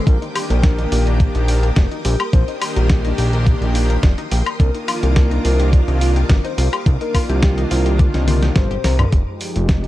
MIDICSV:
0, 0, Header, 1, 7, 480
1, 0, Start_track
1, 0, Tempo, 566038
1, 59, Time_signature, 4, 2, 24, 8
1, 8374, End_track
2, 0, Start_track
2, 0, Title_t, "String machine"
2, 0, Program_c, 0, 50
2, 0, Note_on_c, 0, 79, 68
2, 0, Note_on_c, 0, 86, 87
2, 63, Note_on_c, 0, 70, 73
2, 64, Note_on_c, 0, 87, 85
2, 1947, Note_off_c, 0, 86, 0
2, 1978, Note_on_c, 0, 84, 86
2, 3865, Note_off_c, 0, 79, 0
2, 3867, Note_off_c, 0, 70, 0
2, 3879, Note_off_c, 0, 84, 0
2, 3899, Note_on_c, 0, 70, 80
2, 3899, Note_on_c, 0, 77, 68
2, 3899, Note_on_c, 0, 86, 74
2, 7705, Note_off_c, 0, 70, 0
2, 7705, Note_off_c, 0, 77, 0
2, 7705, Note_off_c, 0, 86, 0
2, 7708, Note_off_c, 0, 87, 0
2, 8374, End_track
3, 0, Start_track
3, 0, Title_t, "Soft synth lead"
3, 0, Program_c, 1, 80
3, 57, Note_on_c, 1, 70, 93
3, 205, Note_off_c, 1, 70, 0
3, 422, Note_on_c, 1, 70, 103
3, 1093, Note_off_c, 1, 70, 0
3, 1737, Note_on_c, 1, 67, 91
3, 1885, Note_off_c, 1, 67, 0
3, 1975, Note_on_c, 1, 72, 94
3, 2124, Note_off_c, 1, 72, 0
3, 2346, Note_on_c, 1, 67, 99
3, 2700, Note_off_c, 1, 67, 0
3, 3902, Note_on_c, 1, 70, 91
3, 4048, Note_off_c, 1, 70, 0
3, 4267, Note_on_c, 1, 70, 105
3, 4936, Note_off_c, 1, 70, 0
3, 5467, Note_on_c, 1, 72, 89
3, 5539, Note_off_c, 1, 72, 0
3, 5583, Note_on_c, 1, 72, 78
3, 5662, Note_off_c, 1, 72, 0
3, 5950, Note_on_c, 1, 70, 94
3, 6085, Note_off_c, 1, 70, 0
3, 6302, Note_on_c, 1, 67, 93
3, 6448, Note_off_c, 1, 67, 0
3, 7264, Note_on_c, 1, 72, 98
3, 7742, Note_off_c, 1, 72, 0
3, 8374, End_track
4, 0, Start_track
4, 0, Title_t, "Synth arpeggio sound"
4, 0, Program_c, 2, 84
4, 60, Note_on_c, 2, 62, 82
4, 179, Note_off_c, 2, 62, 0
4, 186, Note_on_c, 2, 63, 80
4, 231, Note_off_c, 2, 63, 0
4, 300, Note_on_c, 2, 67, 105
4, 384, Note_off_c, 2, 67, 0
4, 427, Note_on_c, 2, 70, 78
4, 502, Note_off_c, 2, 70, 0
4, 541, Note_on_c, 2, 62, 101
4, 624, Note_off_c, 2, 62, 0
4, 664, Note_on_c, 2, 63, 93
4, 711, Note_off_c, 2, 63, 0
4, 780, Note_on_c, 2, 67, 105
4, 830, Note_off_c, 2, 67, 0
4, 908, Note_on_c, 2, 70, 79
4, 983, Note_off_c, 2, 70, 0
4, 1022, Note_on_c, 2, 62, 86
4, 1140, Note_off_c, 2, 62, 0
4, 1148, Note_on_c, 2, 63, 74
4, 1192, Note_off_c, 2, 63, 0
4, 1261, Note_on_c, 2, 67, 105
4, 1345, Note_off_c, 2, 67, 0
4, 1387, Note_on_c, 2, 70, 78
4, 1462, Note_off_c, 2, 70, 0
4, 1502, Note_on_c, 2, 62, 104
4, 1585, Note_off_c, 2, 62, 0
4, 1624, Note_on_c, 2, 63, 100
4, 1670, Note_off_c, 2, 63, 0
4, 1739, Note_on_c, 2, 67, 102
4, 1790, Note_off_c, 2, 67, 0
4, 1863, Note_on_c, 2, 70, 77
4, 1940, Note_off_c, 2, 70, 0
4, 1978, Note_on_c, 2, 62, 82
4, 2098, Note_off_c, 2, 62, 0
4, 2103, Note_on_c, 2, 63, 76
4, 2150, Note_off_c, 2, 63, 0
4, 2218, Note_on_c, 2, 67, 100
4, 2303, Note_off_c, 2, 67, 0
4, 2345, Note_on_c, 2, 70, 82
4, 2422, Note_off_c, 2, 70, 0
4, 2459, Note_on_c, 2, 62, 107
4, 2544, Note_off_c, 2, 62, 0
4, 2584, Note_on_c, 2, 63, 100
4, 2630, Note_off_c, 2, 63, 0
4, 2701, Note_on_c, 2, 67, 104
4, 2751, Note_off_c, 2, 67, 0
4, 2827, Note_on_c, 2, 70, 79
4, 2903, Note_off_c, 2, 70, 0
4, 2944, Note_on_c, 2, 62, 89
4, 3061, Note_off_c, 2, 62, 0
4, 3068, Note_on_c, 2, 63, 81
4, 3113, Note_off_c, 2, 63, 0
4, 3183, Note_on_c, 2, 67, 109
4, 3266, Note_off_c, 2, 67, 0
4, 3307, Note_on_c, 2, 70, 78
4, 3383, Note_off_c, 2, 70, 0
4, 3421, Note_on_c, 2, 62, 104
4, 3504, Note_off_c, 2, 62, 0
4, 3545, Note_on_c, 2, 63, 107
4, 3591, Note_off_c, 2, 63, 0
4, 3660, Note_on_c, 2, 67, 104
4, 3710, Note_off_c, 2, 67, 0
4, 3786, Note_on_c, 2, 70, 79
4, 3862, Note_off_c, 2, 70, 0
4, 3900, Note_on_c, 2, 62, 83
4, 4019, Note_off_c, 2, 62, 0
4, 4026, Note_on_c, 2, 63, 81
4, 4071, Note_off_c, 2, 63, 0
4, 4137, Note_on_c, 2, 65, 106
4, 4223, Note_off_c, 2, 65, 0
4, 4265, Note_on_c, 2, 67, 78
4, 4341, Note_off_c, 2, 67, 0
4, 4380, Note_on_c, 2, 62, 109
4, 4464, Note_off_c, 2, 62, 0
4, 4504, Note_on_c, 2, 63, 99
4, 4550, Note_off_c, 2, 63, 0
4, 4620, Note_on_c, 2, 65, 107
4, 4670, Note_off_c, 2, 65, 0
4, 4745, Note_on_c, 2, 67, 78
4, 4821, Note_off_c, 2, 67, 0
4, 4858, Note_on_c, 2, 62, 85
4, 4979, Note_off_c, 2, 62, 0
4, 4987, Note_on_c, 2, 63, 78
4, 5032, Note_off_c, 2, 63, 0
4, 5099, Note_on_c, 2, 65, 105
4, 5183, Note_off_c, 2, 65, 0
4, 5227, Note_on_c, 2, 67, 77
4, 5303, Note_off_c, 2, 67, 0
4, 5340, Note_on_c, 2, 62, 107
4, 5424, Note_off_c, 2, 62, 0
4, 5465, Note_on_c, 2, 63, 99
4, 5511, Note_off_c, 2, 63, 0
4, 5579, Note_on_c, 2, 65, 100
4, 5630, Note_off_c, 2, 65, 0
4, 5707, Note_on_c, 2, 67, 79
4, 5782, Note_off_c, 2, 67, 0
4, 5819, Note_on_c, 2, 62, 83
4, 5939, Note_off_c, 2, 62, 0
4, 5944, Note_on_c, 2, 63, 80
4, 5990, Note_off_c, 2, 63, 0
4, 6060, Note_on_c, 2, 65, 104
4, 6144, Note_off_c, 2, 65, 0
4, 6187, Note_on_c, 2, 67, 76
4, 6262, Note_off_c, 2, 67, 0
4, 6297, Note_on_c, 2, 62, 99
4, 6383, Note_off_c, 2, 62, 0
4, 6423, Note_on_c, 2, 63, 98
4, 6470, Note_off_c, 2, 63, 0
4, 6536, Note_on_c, 2, 65, 103
4, 6588, Note_off_c, 2, 65, 0
4, 6663, Note_on_c, 2, 67, 82
4, 6741, Note_off_c, 2, 67, 0
4, 6780, Note_on_c, 2, 62, 87
4, 6899, Note_off_c, 2, 62, 0
4, 6905, Note_on_c, 2, 63, 77
4, 6951, Note_off_c, 2, 63, 0
4, 7018, Note_on_c, 2, 72, 82
4, 7103, Note_off_c, 2, 72, 0
4, 7143, Note_on_c, 2, 67, 78
4, 7247, Note_off_c, 2, 67, 0
4, 7257, Note_on_c, 2, 67, 86
4, 7309, Note_off_c, 2, 67, 0
4, 7384, Note_on_c, 2, 67, 110
4, 7461, Note_off_c, 2, 67, 0
4, 7498, Note_on_c, 2, 70, 100
4, 7583, Note_off_c, 2, 70, 0
4, 7624, Note_on_c, 2, 62, 75
4, 7701, Note_off_c, 2, 62, 0
4, 8374, End_track
5, 0, Start_track
5, 0, Title_t, "Analog synth pad"
5, 0, Program_c, 3, 89
5, 51, Note_on_c, 3, 51, 83
5, 57, Note_on_c, 3, 58, 81
5, 63, Note_on_c, 3, 62, 77
5, 70, Note_on_c, 3, 67, 92
5, 748, Note_off_c, 3, 51, 0
5, 751, Note_off_c, 3, 58, 0
5, 754, Note_off_c, 3, 62, 0
5, 757, Note_off_c, 3, 67, 0
5, 1968, Note_on_c, 3, 51, 86
5, 1975, Note_on_c, 3, 58, 80
5, 1979, Note_on_c, 3, 62, 81
5, 1984, Note_on_c, 3, 67, 93
5, 2666, Note_off_c, 3, 51, 0
5, 2670, Note_off_c, 3, 58, 0
5, 2672, Note_off_c, 3, 62, 0
5, 2675, Note_off_c, 3, 67, 0
5, 3891, Note_on_c, 3, 51, 87
5, 3898, Note_on_c, 3, 58, 78
5, 3904, Note_on_c, 3, 62, 79
5, 3908, Note_on_c, 3, 65, 95
5, 4588, Note_off_c, 3, 51, 0
5, 4591, Note_off_c, 3, 58, 0
5, 4594, Note_off_c, 3, 62, 0
5, 4596, Note_off_c, 3, 65, 0
5, 5806, Note_on_c, 3, 51, 85
5, 5812, Note_on_c, 3, 58, 78
5, 5817, Note_on_c, 3, 62, 81
5, 5825, Note_on_c, 3, 65, 98
5, 6505, Note_off_c, 3, 51, 0
5, 6508, Note_off_c, 3, 58, 0
5, 6511, Note_off_c, 3, 62, 0
5, 6515, Note_off_c, 3, 65, 0
5, 7731, Note_on_c, 3, 53, 79
5, 7739, Note_on_c, 3, 56, 78
5, 7743, Note_on_c, 3, 63, 75
5, 7750, Note_on_c, 3, 67, 93
5, 8374, Note_off_c, 3, 53, 0
5, 8374, Note_off_c, 3, 56, 0
5, 8374, Note_off_c, 3, 63, 0
5, 8374, Note_off_c, 3, 67, 0
5, 8374, End_track
6, 0, Start_track
6, 0, Title_t, "Analog synth bass"
6, 0, Program_c, 4, 38
6, 58, Note_on_c, 4, 34, 100
6, 151, Note_off_c, 4, 34, 0
6, 425, Note_on_c, 4, 34, 105
6, 730, Note_off_c, 4, 34, 0
6, 779, Note_on_c, 4, 34, 88
6, 1091, Note_off_c, 4, 34, 0
6, 1145, Note_on_c, 4, 34, 101
6, 1450, Note_off_c, 4, 34, 0
6, 1497, Note_on_c, 4, 29, 93
6, 1590, Note_off_c, 4, 29, 0
6, 1740, Note_on_c, 4, 34, 99
6, 1832, Note_off_c, 4, 34, 0
6, 1978, Note_on_c, 4, 34, 102
6, 2071, Note_off_c, 4, 34, 0
6, 2345, Note_on_c, 4, 34, 107
6, 2650, Note_off_c, 4, 34, 0
6, 2698, Note_on_c, 4, 34, 92
6, 3011, Note_off_c, 4, 34, 0
6, 3065, Note_on_c, 4, 34, 105
6, 3370, Note_off_c, 4, 34, 0
6, 3419, Note_on_c, 4, 29, 91
6, 3511, Note_off_c, 4, 29, 0
6, 3661, Note_on_c, 4, 34, 104
6, 3752, Note_off_c, 4, 34, 0
6, 3898, Note_on_c, 4, 36, 102
6, 3991, Note_off_c, 4, 36, 0
6, 4266, Note_on_c, 4, 36, 103
6, 4570, Note_off_c, 4, 36, 0
6, 4620, Note_on_c, 4, 36, 94
6, 4931, Note_off_c, 4, 36, 0
6, 4985, Note_on_c, 4, 36, 101
6, 5290, Note_off_c, 4, 36, 0
6, 5339, Note_on_c, 4, 31, 95
6, 5431, Note_off_c, 4, 31, 0
6, 5578, Note_on_c, 4, 36, 100
6, 5671, Note_off_c, 4, 36, 0
6, 5819, Note_on_c, 4, 36, 107
6, 5911, Note_off_c, 4, 36, 0
6, 6184, Note_on_c, 4, 36, 106
6, 6490, Note_off_c, 4, 36, 0
6, 6539, Note_on_c, 4, 36, 98
6, 6851, Note_off_c, 4, 36, 0
6, 6907, Note_on_c, 4, 36, 107
6, 7211, Note_off_c, 4, 36, 0
6, 7260, Note_on_c, 4, 31, 91
6, 7438, Note_off_c, 4, 31, 0
6, 7501, Note_on_c, 4, 36, 104
6, 7679, Note_off_c, 4, 36, 0
6, 7739, Note_on_c, 4, 29, 96
6, 7831, Note_off_c, 4, 29, 0
6, 8107, Note_on_c, 4, 29, 103
6, 8374, Note_off_c, 4, 29, 0
6, 8374, End_track
7, 0, Start_track
7, 0, Title_t, "Drums"
7, 58, Note_on_c, 9, 36, 121
7, 63, Note_on_c, 9, 42, 65
7, 143, Note_off_c, 9, 36, 0
7, 147, Note_off_c, 9, 42, 0
7, 189, Note_on_c, 9, 42, 40
7, 273, Note_off_c, 9, 42, 0
7, 301, Note_on_c, 9, 46, 106
7, 301, Note_on_c, 9, 76, 88
7, 386, Note_off_c, 9, 46, 0
7, 386, Note_off_c, 9, 76, 0
7, 427, Note_on_c, 9, 42, 38
7, 512, Note_off_c, 9, 42, 0
7, 538, Note_on_c, 9, 36, 118
7, 539, Note_on_c, 9, 38, 110
7, 541, Note_on_c, 9, 42, 65
7, 623, Note_off_c, 9, 36, 0
7, 624, Note_off_c, 9, 38, 0
7, 626, Note_off_c, 9, 42, 0
7, 666, Note_on_c, 9, 42, 37
7, 751, Note_off_c, 9, 42, 0
7, 780, Note_on_c, 9, 46, 106
7, 865, Note_off_c, 9, 46, 0
7, 906, Note_on_c, 9, 42, 36
7, 991, Note_off_c, 9, 42, 0
7, 1018, Note_on_c, 9, 36, 117
7, 1019, Note_on_c, 9, 42, 64
7, 1103, Note_off_c, 9, 36, 0
7, 1104, Note_off_c, 9, 42, 0
7, 1144, Note_on_c, 9, 42, 41
7, 1229, Note_off_c, 9, 42, 0
7, 1258, Note_on_c, 9, 46, 109
7, 1343, Note_off_c, 9, 46, 0
7, 1385, Note_on_c, 9, 42, 41
7, 1470, Note_off_c, 9, 42, 0
7, 1496, Note_on_c, 9, 38, 115
7, 1497, Note_on_c, 9, 36, 118
7, 1498, Note_on_c, 9, 42, 63
7, 1580, Note_off_c, 9, 38, 0
7, 1582, Note_off_c, 9, 36, 0
7, 1583, Note_off_c, 9, 42, 0
7, 1624, Note_on_c, 9, 42, 38
7, 1709, Note_off_c, 9, 42, 0
7, 1737, Note_on_c, 9, 46, 112
7, 1822, Note_off_c, 9, 46, 0
7, 1865, Note_on_c, 9, 42, 39
7, 1865, Note_on_c, 9, 76, 93
7, 1950, Note_off_c, 9, 42, 0
7, 1950, Note_off_c, 9, 76, 0
7, 1978, Note_on_c, 9, 36, 117
7, 1978, Note_on_c, 9, 42, 69
7, 2063, Note_off_c, 9, 36, 0
7, 2063, Note_off_c, 9, 42, 0
7, 2104, Note_on_c, 9, 42, 41
7, 2189, Note_off_c, 9, 42, 0
7, 2218, Note_on_c, 9, 46, 107
7, 2218, Note_on_c, 9, 76, 89
7, 2303, Note_off_c, 9, 46, 0
7, 2303, Note_off_c, 9, 76, 0
7, 2344, Note_on_c, 9, 42, 41
7, 2429, Note_off_c, 9, 42, 0
7, 2456, Note_on_c, 9, 38, 119
7, 2458, Note_on_c, 9, 42, 69
7, 2459, Note_on_c, 9, 36, 116
7, 2541, Note_off_c, 9, 38, 0
7, 2543, Note_off_c, 9, 36, 0
7, 2543, Note_off_c, 9, 42, 0
7, 2584, Note_on_c, 9, 42, 39
7, 2668, Note_off_c, 9, 42, 0
7, 2698, Note_on_c, 9, 46, 99
7, 2783, Note_off_c, 9, 46, 0
7, 2825, Note_on_c, 9, 42, 41
7, 2910, Note_off_c, 9, 42, 0
7, 2939, Note_on_c, 9, 36, 119
7, 2941, Note_on_c, 9, 42, 67
7, 3023, Note_off_c, 9, 36, 0
7, 3026, Note_off_c, 9, 42, 0
7, 3068, Note_on_c, 9, 42, 40
7, 3153, Note_off_c, 9, 42, 0
7, 3180, Note_on_c, 9, 46, 108
7, 3265, Note_off_c, 9, 46, 0
7, 3307, Note_on_c, 9, 42, 40
7, 3392, Note_off_c, 9, 42, 0
7, 3418, Note_on_c, 9, 38, 110
7, 3420, Note_on_c, 9, 36, 118
7, 3420, Note_on_c, 9, 42, 61
7, 3503, Note_off_c, 9, 38, 0
7, 3504, Note_off_c, 9, 36, 0
7, 3505, Note_off_c, 9, 42, 0
7, 3545, Note_on_c, 9, 42, 43
7, 3629, Note_off_c, 9, 42, 0
7, 3659, Note_on_c, 9, 46, 110
7, 3744, Note_off_c, 9, 46, 0
7, 3785, Note_on_c, 9, 42, 42
7, 3785, Note_on_c, 9, 76, 92
7, 3870, Note_off_c, 9, 42, 0
7, 3870, Note_off_c, 9, 76, 0
7, 3899, Note_on_c, 9, 36, 120
7, 3900, Note_on_c, 9, 42, 69
7, 3984, Note_off_c, 9, 36, 0
7, 3984, Note_off_c, 9, 42, 0
7, 4024, Note_on_c, 9, 42, 43
7, 4109, Note_off_c, 9, 42, 0
7, 4140, Note_on_c, 9, 46, 100
7, 4140, Note_on_c, 9, 76, 88
7, 4225, Note_off_c, 9, 46, 0
7, 4225, Note_off_c, 9, 76, 0
7, 4266, Note_on_c, 9, 42, 42
7, 4351, Note_off_c, 9, 42, 0
7, 4377, Note_on_c, 9, 38, 116
7, 4379, Note_on_c, 9, 36, 113
7, 4379, Note_on_c, 9, 42, 66
7, 4462, Note_off_c, 9, 38, 0
7, 4464, Note_off_c, 9, 36, 0
7, 4464, Note_off_c, 9, 42, 0
7, 4506, Note_on_c, 9, 42, 41
7, 4591, Note_off_c, 9, 42, 0
7, 4620, Note_on_c, 9, 46, 103
7, 4705, Note_off_c, 9, 46, 0
7, 4745, Note_on_c, 9, 42, 41
7, 4830, Note_off_c, 9, 42, 0
7, 4859, Note_on_c, 9, 36, 109
7, 4859, Note_on_c, 9, 42, 67
7, 4944, Note_off_c, 9, 36, 0
7, 4944, Note_off_c, 9, 42, 0
7, 4987, Note_on_c, 9, 42, 45
7, 5072, Note_off_c, 9, 42, 0
7, 5099, Note_on_c, 9, 46, 101
7, 5184, Note_off_c, 9, 46, 0
7, 5225, Note_on_c, 9, 42, 43
7, 5310, Note_off_c, 9, 42, 0
7, 5338, Note_on_c, 9, 38, 117
7, 5339, Note_on_c, 9, 36, 117
7, 5340, Note_on_c, 9, 42, 65
7, 5423, Note_off_c, 9, 38, 0
7, 5424, Note_off_c, 9, 36, 0
7, 5425, Note_off_c, 9, 42, 0
7, 5466, Note_on_c, 9, 42, 42
7, 5551, Note_off_c, 9, 42, 0
7, 5581, Note_on_c, 9, 46, 110
7, 5666, Note_off_c, 9, 46, 0
7, 5706, Note_on_c, 9, 42, 42
7, 5706, Note_on_c, 9, 76, 88
7, 5791, Note_off_c, 9, 42, 0
7, 5791, Note_off_c, 9, 76, 0
7, 5819, Note_on_c, 9, 36, 118
7, 5819, Note_on_c, 9, 42, 72
7, 5904, Note_off_c, 9, 36, 0
7, 5904, Note_off_c, 9, 42, 0
7, 5944, Note_on_c, 9, 42, 43
7, 6029, Note_off_c, 9, 42, 0
7, 6059, Note_on_c, 9, 36, 58
7, 6059, Note_on_c, 9, 46, 102
7, 6059, Note_on_c, 9, 76, 83
7, 6144, Note_off_c, 9, 36, 0
7, 6144, Note_off_c, 9, 46, 0
7, 6144, Note_off_c, 9, 76, 0
7, 6185, Note_on_c, 9, 42, 44
7, 6270, Note_off_c, 9, 42, 0
7, 6297, Note_on_c, 9, 38, 118
7, 6299, Note_on_c, 9, 36, 120
7, 6299, Note_on_c, 9, 42, 71
7, 6382, Note_off_c, 9, 38, 0
7, 6384, Note_off_c, 9, 36, 0
7, 6384, Note_off_c, 9, 42, 0
7, 6426, Note_on_c, 9, 42, 42
7, 6510, Note_off_c, 9, 42, 0
7, 6538, Note_on_c, 9, 46, 105
7, 6623, Note_off_c, 9, 46, 0
7, 6664, Note_on_c, 9, 42, 42
7, 6749, Note_off_c, 9, 42, 0
7, 6778, Note_on_c, 9, 42, 73
7, 6778, Note_on_c, 9, 48, 64
7, 6779, Note_on_c, 9, 36, 120
7, 6863, Note_off_c, 9, 42, 0
7, 6863, Note_off_c, 9, 48, 0
7, 6864, Note_off_c, 9, 36, 0
7, 6905, Note_on_c, 9, 38, 60
7, 6905, Note_on_c, 9, 42, 45
7, 6989, Note_off_c, 9, 38, 0
7, 6989, Note_off_c, 9, 42, 0
7, 7019, Note_on_c, 9, 46, 102
7, 7019, Note_on_c, 9, 48, 82
7, 7104, Note_off_c, 9, 46, 0
7, 7104, Note_off_c, 9, 48, 0
7, 7145, Note_on_c, 9, 38, 71
7, 7145, Note_on_c, 9, 42, 45
7, 7230, Note_off_c, 9, 38, 0
7, 7230, Note_off_c, 9, 42, 0
7, 7256, Note_on_c, 9, 38, 125
7, 7258, Note_on_c, 9, 42, 69
7, 7258, Note_on_c, 9, 47, 83
7, 7259, Note_on_c, 9, 36, 117
7, 7341, Note_off_c, 9, 38, 0
7, 7343, Note_off_c, 9, 42, 0
7, 7343, Note_off_c, 9, 47, 0
7, 7344, Note_off_c, 9, 36, 0
7, 7385, Note_on_c, 9, 42, 41
7, 7470, Note_off_c, 9, 42, 0
7, 7499, Note_on_c, 9, 38, 103
7, 7499, Note_on_c, 9, 46, 110
7, 7584, Note_off_c, 9, 38, 0
7, 7584, Note_off_c, 9, 46, 0
7, 7624, Note_on_c, 9, 42, 45
7, 7624, Note_on_c, 9, 45, 93
7, 7624, Note_on_c, 9, 76, 88
7, 7709, Note_off_c, 9, 42, 0
7, 7709, Note_off_c, 9, 45, 0
7, 7709, Note_off_c, 9, 76, 0
7, 7737, Note_on_c, 9, 42, 83
7, 7739, Note_on_c, 9, 36, 113
7, 7822, Note_off_c, 9, 42, 0
7, 7824, Note_off_c, 9, 36, 0
7, 7978, Note_on_c, 9, 46, 98
7, 8063, Note_off_c, 9, 46, 0
7, 8105, Note_on_c, 9, 42, 53
7, 8189, Note_off_c, 9, 42, 0
7, 8216, Note_on_c, 9, 38, 116
7, 8218, Note_on_c, 9, 42, 78
7, 8219, Note_on_c, 9, 36, 108
7, 8301, Note_off_c, 9, 38, 0
7, 8303, Note_off_c, 9, 42, 0
7, 8304, Note_off_c, 9, 36, 0
7, 8343, Note_on_c, 9, 42, 36
7, 8374, Note_off_c, 9, 42, 0
7, 8374, End_track
0, 0, End_of_file